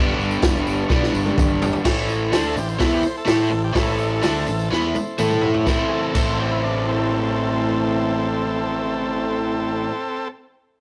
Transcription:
0.00 0.12 G1 loud
0.00 0.88 G2 loud
0.00 0.88 D3 medium
0.00 0.89 G3 loud
0.00 0.90 B3 loud
0.00 0.90 D4 loud
0.00 1.80 D4 medium
0.00 1.80 G4 medium
0.00 1.81 B4 medium
0.19 0.36 G1 medium
0.19 tambourine soft
0.31 tambourine medium
0.42 0.60 F1 medium
0.42 kick loud
0.42 snare loud
0.42 tambourine loud
0.42 crash medium
0.67 0.83 G1 medium
0.67 tambourine medium
0.90 1.07 B1 loud
0.90 1.83 G2 medium
0.90 1.83 D3 medium
0.90 1.84 G3 medium
0.90 1.85 B3 medium
0.90 kick loud
0.90 snare medium
0.95 1.86 D4 loud
1.03 snare medium
1.14 1.31 G1 loud
1.14 tambourine medium
1.26 high tom medium
1.26 tambourine soft
1.38 1.71 G1 loud
1.38 kick loud
1.38 mid tom loud
1.38 tambourine loud
1.62 floor tom loud
1.62 tambourine medium
1.73 floor tom loud
1.73 tambourine soft
1.84 2.29 A1 medium
1.84 2.31 A2 medium
1.84 2.32 E3 loud
1.84 2.31 A3 medium
1.84 5.62 E4 medium
1.84 5.62 A4 medium
1.84 5.63 C5 medium
1.84 kick loud
1.84 snare loud
1.84 crash loud
2.09 tambourine medium
2.31 2.54 D2 medium
2.31 2.55 D3 loud
2.31 2.55 A3 loud
2.31 2.56 D4 loud
2.31 2.44 C5 loud
2.31 snare loud
2.31 open hi-hat medium
2.31 tambourine loud
2.47 2.56 A4 medium
2.55 2.78 A1 medium
2.55 2.75 A2 medium
2.55 2.75 E3 medium
2.55 2.68 G4 medium
2.55 tambourine medium
2.68 2.80 C5 medium
2.68 tambourine medium
2.79 3.02 E2 medium
2.79 3.02 E3 medium
2.79 3.03 B3 medium
2.79 3.03 E4 loud
2.79 2.92 A4 medium
2.79 kick loud
2.79 snare loud
2.79 open hi-hat medium
2.94 3.04 G4 medium
3.03 3.16 C5 medium
3.03 muted overdriven electric guitar stroke medium
3.03 muted fingered electric bass stroke soft
3.03 tambourine medium
3.16 3.27 A4 medium
3.16 tambourine soft
3.25 3.49 A2 medium
3.25 3.49 A3 medium
3.25 3.50 E4 medium
3.25 3.50 A4 loud
3.25 snare loud
3.25 open hi-hat medium
3.25 tambourine loud
3.29 3.39 G4 medium
3.41 3.51 C5 medium
3.49 3.74 A1 medium
3.49 3.69 A2 medium
3.49 3.70 E3 medium
3.49 3.62 A4 medium
3.64 3.75 G4 medium
3.73 4.19 A1 loud
3.73 4.21 A2 medium
3.73 4.22 E3 loud
3.73 4.21 A3 loud
3.73 kick loud
3.73 snare loud
3.73 open hi-hat medium
3.77 4.69 A4 medium
3.99 tambourine medium
4.21 4.45 D2 medium
4.21 4.45 D3 medium
4.21 4.46 A3 medium
4.21 4.46 D4 loud
4.21 snare loud
4.21 open hi-hat medium
4.21 tambourine loud
4.47 4.69 A1 medium
4.47 4.66 A2 medium
4.47 4.66 E3 medium
4.47 tambourine medium
4.59 tambourine medium
4.70 4.93 E2 medium
4.70 4.94 E3 medium
4.70 4.94 B3 medium
4.70 4.95 E4 loud
4.70 snare medium
4.70 tambourine soft
4.94 muted fingered electric bass stroke soft
4.94 muted overdriven electric guitar stroke medium
4.94 high tom medium
4.94 tambourine medium
5.07 tambourine soft
5.18 5.63 A2 medium
5.18 5.66 A3 medium
5.18 5.66 E4 medium
5.18 5.66 A4 medium
5.18 mid tom medium
5.18 tambourine loud
5.30 mid tom medium
5.41 floor tom medium
5.54 floor tom medium
5.66 5.80 A1 medium
5.66 6.14 A2 medium
5.66 6.14 E3 medium
5.66 6.15 A3 loud
5.66 6.16 C4 loud
5.66 9.39 E4 medium
5.66 6.16 E4 loud
5.66 9.39 A4 medium
5.66 9.39 C5 medium
5.66 6.18 C5 medium
5.66 kick loud
5.66 snare medium
5.66 tambourine medium
5.89 5.91 G#4 medium
5.93 6.39 A4 loud
6.14 9.87 A1 medium
6.14 9.90 A2 medium
6.14 9.90 E3 medium
6.14 9.91 A3 medium
6.14 9.92 C4 medium
6.14 9.92 E4 medium
6.14 kick loud
6.14 crash medium
6.14 tambourine medium
6.18 9.94 C5 medium
6.41 6.51 G4 medium
6.51 6.62 E4 medium
6.63 6.86 D4 medium
6.88 10.28 C4 medium
6.88 10.28 A4 medium

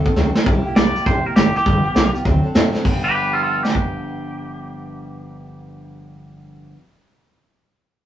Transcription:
0.04 0.16 C4 medium
0.04 0.16 D4 medium
0.04 0.16 A4 medium
0.04 kick loud
0.16 0.35 C#2 medium
0.16 0.35 F#3 medium
0.16 0.36 C4 medium
0.16 0.35 D4 medium
0.16 0.34 A4 medium
0.16 snare medium
0.35 0.47 C4 medium
0.35 0.47 D4 medium
0.35 0.46 A4 medium
0.35 snare medium
0.46 0.65 C2 medium
0.46 0.65 C3 medium
0.46 0.66 G3 medium
0.46 0.66 A#3 medium
0.46 0.65 E4 medium
0.46 0.64 G4 loud
0.46 kick loud
0.46 closed hi-hat medium
0.65 0.77 A#3 soft
0.65 0.77 E4 medium
0.65 0.76 G4 medium
0.65 muted upright bass stroke medium
0.76 0.95 A#1 loud
0.76 0.96 G3 medium
0.76 0.96 A#3 medium
0.76 0.96 E4 medium
0.76 0.94 G4 medium
0.76 1.05 D5 loud
0.76 snare loud
0.76 closed hi-hat medium
0.95 1.06 A#3 soft
0.95 1.06 E4 medium
0.95 1.06 G4 medium
0.95 muted upright bass stroke medium
0.95 closed hi-hat medium
1.06 1.25 A1 medium
1.06 1.25 C3 medium
1.06 1.25 G3 medium
1.06 1.26 A#3 medium
1.06 1.25 E4 medium
1.06 1.23 G4 medium
1.06 1.26 C5 medium
1.06 kick loud
1.06 closed hi-hat medium
1.25 1.36 A#3 soft
1.25 1.36 E4 soft
1.25 1.36 G4 medium
1.25 1.36 A#4 medium
1.25 muted upright bass stroke medium
1.36 1.54 G#1 medium
1.36 1.55 G3 medium
1.36 1.56 A#3 medium
1.36 1.55 E4 medium
1.36 1.55 G4 medium
1.36 1.54 G4 medium
1.36 snare loud
1.36 closed hi-hat medium
1.55 1.66 A#3 soft
1.55 1.67 E4 medium
1.55 1.66 G4 medium
1.55 2.14 G4 loud
1.55 muted upright bass stroke medium
1.55 closed hi-hat medium
1.66 1.84 G1 medium
1.66 1.85 G2 medium
1.66 1.85 D3 medium
1.66 1.86 F3 medium
1.66 1.86 B3 medium
1.66 1.85 F4 medium
1.66 1.83 G4 medium
1.66 kick loud
1.66 closed hi-hat medium
1.84 1.94 F3 soft
1.84 1.95 B3 soft
1.84 1.95 F4 medium
1.84 1.96 G4 medium
1.84 muted upright bass stroke medium
1.95 2.14 B1 loud
1.95 2.15 F3 medium
1.95 2.14 B3 medium
1.95 2.13 F4 medium
1.95 2.12 G4 medium
1.95 snare loud
1.95 closed hi-hat medium
2.14 2.25 F3 medium
2.14 2.25 B3 medium
2.14 2.25 F4 medium
2.14 2.25 G4 medium
2.14 closed hi-hat medium
2.25 2.44 D2 medium
2.25 2.45 D3 medium
2.25 2.45 F#3 medium
2.25 2.45 C4 loud
2.25 2.44 D4 medium
2.25 2.42 A4 medium
2.25 kick loud
2.25 closed hi-hat medium
2.43 2.54 C4 soft
2.43 2.55 D4 medium
2.43 2.55 A4 medium
2.43 muted upright bass stroke medium
2.54 2.74 A2 medium
2.54 2.74 F#3 medium
2.54 2.75 C4 medium
2.54 2.74 D4 medium
2.54 2.72 A4 medium
2.54 snare loud
2.54 closed hi-hat medium
2.73 2.86 C4 soft
2.73 2.86 D4 medium
2.73 2.85 A4 medium
2.73 muted upright bass stroke medium
2.73 snare medium
2.82 6.71 G1 medium
2.82 6.73 G2 medium
2.82 6.74 D3 medium
2.82 kick loud
2.82 crash medium
2.86 6.75 F3 medium
2.86 6.76 B3 medium
2.86 6.77 D4 medium
2.91 6.78 G4 medium
3.04 3.13 G4 medium
3.04 3.14 B4 medium
3.14 3.33 G4 medium
3.14 3.34 B4 medium
3.33 3.42 F4 medium
3.33 3.43 A4 medium
3.43 3.62 F4 medium
3.43 3.63 A4 medium
3.63 6.70 G4 medium
3.63 snare medium
3.70 snare medium
3.75 kick medium

